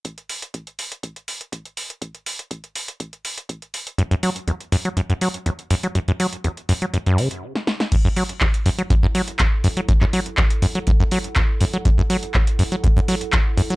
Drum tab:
CC |----------------|----------------|----------------|----------------|
HH |xxoxxxoxxxoxxxox|xxoxxxoxxxoxxxox|xxoxxxoxxxoxxxox|xxoxxxoxxxox----|
CP |----------------|----------------|----------------|----------------|
SD |----------------|----------------|----------------|-------------ooo|
BD |o---o---o---o---|o---o---o---o---|o---o---o---o---|o---o---o-------|

CC |x---------------|----------------|----------------|
HH |x-ox-xoxx-oxx-ox|x-ox-xoxx-oxx-ox|x-ox-xoxx-oxx-ox|
CP |----x-------x---|-x--x-------x---|----x-------x---|
SD |----------------|----------------|----------------|
BD |o---o---o---o---|o---o---o---o---|o---o---o---o---|